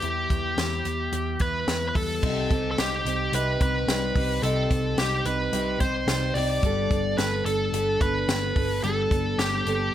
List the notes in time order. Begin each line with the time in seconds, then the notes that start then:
Already playing: E3 G3 B3 G4
0.02 E2 E4, closed hi-hat
0.30 E2 B3, kick, closed hi-hat
0.58 E2 E4, snare, closed hi-hat
0.85 E2 B3, closed hi-hat
1.12 E2 E3, closed hi-hat
1.39 E2 E4 B4, kick, closed hi-hat
1.68 E2 B3, snare, closed hi-hat
1.89 B4
1.95 E2 G3 A4, kick, open hi-hat
2.22 C2 C3 G3 C4 D#4 G4, kick, crash
2.50 C2 C4 D#4 G4, kick, closed hi-hat
2.71 A4
2.78 C2 G3 C4 D#4 G4, snare, closed hi-hat
3.05 C2 C4 D#4 G4, closed hi-hat
3.33 C2 C3 G3 C4 D#4 G4 B4, closed hi-hat
3.60 C2 C4 D#4 G4 B4, kick, closed hi-hat
3.87 C2 G3 C4 D#4 G4, snare, closed hi-hat
4.15 C2 C4 D#4 G4, kick, open hi-hat
4.43 C2 C3 G3 C4 D#4 G4 A4, closed hi-hat
4.70 C2 C4 D#4 G4, kick, closed hi-hat
4.97 C2 G3 C4 D#4 G4, snare, closed hi-hat
5.25 C2 C4 D#4 G4 B4, closed hi-hat
5.52 C2 C3 G3 C4 D#4 G4, closed hi-hat
5.80 C2 C4 D#4 G4 C5, kick, closed hi-hat
6.07 C2 G3 C4 D#4 G4, snare, closed hi-hat
6.34 C2 G4 D5, open hi-hat
6.38 C4 D#4
6.63 G1 G3 B3 D4 A4, kick, closed hi-hat
6.91 G1 B3 D4 A4, kick, closed hi-hat
7.17 G1 G3 B3 D4 A4 B4, snare, closed hi-hat
7.45 G1 B3 D4 A4, closed hi-hat
7.73 G1 G3 B3 D4 A4, closed hi-hat
8.01 G1 B3 D4 A4 B4, kick, closed hi-hat
8.28 G1 G3 B3 D4 A4, snare, closed hi-hat
8.56 G1 B3 D4 A4, kick, open hi-hat
8.83 G1 G3 B3 D4 A4, closed hi-hat
9.11 G1 B3 D4 A4, kick, closed hi-hat
9.38 G1 G3 B3 D4 G4 A4, snare, closed hi-hat
9.66 G1 B3 C4 D4 A4, closed hi-hat
9.79 D4